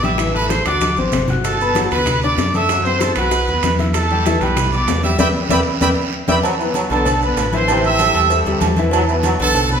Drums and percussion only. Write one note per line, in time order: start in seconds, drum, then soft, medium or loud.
0.03 high bongo soft
0.03 high conga medium
0.03 short guiro medium
0.03 maracas soft
0.18 high bongo medium
0.18 high conga soft
0.18 high timbale loud
0.18 long guiro medium
0.18 maracas medium
0.35 high conga soft
0.35 maracas soft
0.50 high bongo medium
0.50 high conga loud
0.50 high timbale medium
0.50 short guiro medium
0.50 maracas medium
0.65 high bongo soft
0.65 high conga medium
0.65 high timbale medium
0.65 short guiro medium
0.65 maracas soft
0.81 high bongo medium
0.81 high conga loud
0.81 high timbale medium
0.81 long guiro medium
0.81 maracas medium
0.97 high bongo soft
0.97 high conga medium
0.97 maracas soft
1.12 high bongo soft
1.12 low bongo medium
1.12 low conga medium
1.12 high timbale medium
1.12 short guiro medium
1.12 maracas medium
1.28 high bongo soft
1.28 low conga medium
1.28 short guiro medium
1.28 maracas soft
1.44 high bongo medium
1.44 high conga soft
1.44 high timbale medium
1.44 long guiro medium
1.44 maracas medium
1.60 high conga soft
1.60 maracas soft
1.75 high bongo medium
1.75 high conga loud
1.75 high timbale medium
1.75 short guiro medium
1.75 maracas medium
1.91 high bongo soft
1.91 high conga soft
1.91 high timbale medium
1.91 short guiro medium
1.91 maracas soft
2.06 high bongo medium
2.06 high conga soft
2.06 low conga medium
2.06 high timbale medium
2.06 long guiro medium
2.06 maracas medium
2.22 high bongo soft
2.22 high conga soft
2.22 maracas soft
2.38 high bongo soft
2.38 low bongo medium
2.38 high conga soft
2.38 high timbale medium
2.38 short guiro medium
2.38 maracas medium
2.53 high bongo soft
2.53 high conga medium
2.53 short guiro medium
2.53 maracas soft
2.69 high bongo medium
2.69 high conga soft
2.69 high timbale medium
2.69 long guiro medium
2.69 maracas medium
2.85 high conga soft
2.85 maracas soft
3.01 high bongo medium
3.01 high conga loud
3.01 high timbale medium
3.01 short guiro medium
3.01 maracas medium
3.16 high bongo soft
3.16 high conga soft
3.16 high timbale medium
3.16 short guiro medium
3.16 maracas soft
3.31 high bongo medium
3.31 high conga soft
3.31 high timbale medium
3.31 long guiro medium
3.31 maracas medium
3.47 high bongo soft
3.47 high conga soft
3.47 maracas soft
3.63 high bongo soft
3.63 low bongo medium
3.63 high conga medium
3.63 high timbale loud
3.63 short guiro medium
3.63 maracas medium
3.79 high bongo soft
3.79 high conga medium
3.79 short guiro medium
3.79 maracas soft
3.94 high bongo medium
3.94 high conga soft
3.94 high timbale medium
3.94 long guiro medium
3.94 maracas medium
4.10 high conga soft
4.10 maracas soft
4.25 high bongo medium
4.25 high conga loud
4.25 high timbale medium
4.25 short guiro medium
4.25 maracas medium
4.41 high bongo soft
4.41 high conga soft
4.41 high timbale medium
4.41 short guiro medium
4.41 maracas soft
4.56 high bongo medium
4.56 high conga soft
4.56 low conga medium
4.56 high timbale medium
4.56 long guiro medium
4.56 maracas medium
4.73 high bongo soft
4.73 high conga soft
4.73 maracas soft
4.87 high bongo soft
4.87 low bongo loud
4.87 high timbale medium
4.87 low timbale medium
4.87 short guiro medium
4.87 maracas medium
5.03 high bongo soft
5.03 high conga medium
5.03 short guiro medium
5.03 maracas soft
5.19 low bongo loud
5.19 high conga loud
5.19 high timbale medium
5.19 long guiro loud
5.19 maracas loud
5.49 low bongo loud
5.49 high conga loud
5.49 high timbale loud
5.49 long guiro medium
5.49 maracas loud
5.81 low bongo loud
5.81 high conga loud
5.81 high timbale medium
5.81 long guiro loud
5.81 maracas loud
6.28 low bongo loud
6.28 high conga loud
6.28 high timbale medium
6.28 long guiro loud
6.28 maracas medium
6.43 cowbell loud
6.43 high conga soft
6.43 low agogo loud
6.43 long guiro medium
6.43 maracas medium
6.59 high conga soft
6.59 maracas soft
6.74 cowbell medium
6.74 high conga loud
6.74 low agogo medium
6.74 short guiro medium
6.74 maracas medium
6.90 cowbell medium
6.90 high conga soft
6.90 low agogo medium
6.90 short guiro medium
6.90 maracas soft
7.05 cowbell loud
7.05 high conga soft
7.05 low conga medium
7.05 low agogo loud
7.05 long guiro medium
7.05 maracas medium
7.22 high conga soft
7.22 maracas soft
7.37 cowbell medium
7.37 high conga soft
7.37 low timbale medium
7.37 low agogo medium
7.37 short guiro medium
7.37 maracas medium
7.53 cowbell medium
7.53 high conga medium
7.53 short guiro medium
7.53 maracas soft
7.68 cowbell loud
7.68 high conga soft
7.68 low agogo loud
7.68 long guiro medium
7.68 maracas medium
7.84 high conga soft
7.84 maracas soft
7.99 cowbell medium
7.99 high conga loud
7.99 low agogo medium
7.99 short guiro medium
7.99 maracas medium
8.15 cowbell medium
8.15 high conga soft
8.15 low agogo loud
8.15 short guiro medium
8.15 maracas soft
8.30 cowbell loud
8.30 high conga soft
8.30 long guiro medium
8.30 maracas medium
8.46 high conga soft
8.46 low agogo medium
8.46 maracas soft
8.61 cowbell medium
8.61 high conga medium
8.61 low timbale medium
8.61 low agogo loud
8.61 short guiro medium
8.61 maracas medium
8.76 cowbell medium
8.76 high conga medium
8.76 short guiro medium
8.76 maracas soft
8.91 cowbell loud
8.91 high conga soft
8.91 low agogo loud
8.91 long guiro medium
8.91 maracas medium
9.08 high conga soft
9.08 maracas soft
9.23 cowbell medium
9.23 high conga loud
9.23 low agogo medium
9.23 short guiro medium
9.23 maracas medium
9.39 cowbell medium
9.39 high conga soft
9.39 low agogo medium
9.39 short guiro medium
9.39 maracas soft
9.54 cowbell loud
9.54 high conga soft
9.54 low conga medium
9.54 low agogo loud
9.54 long guiro medium
9.54 maracas medium
9.70 high conga soft
9.70 low conga medium
9.70 maracas soft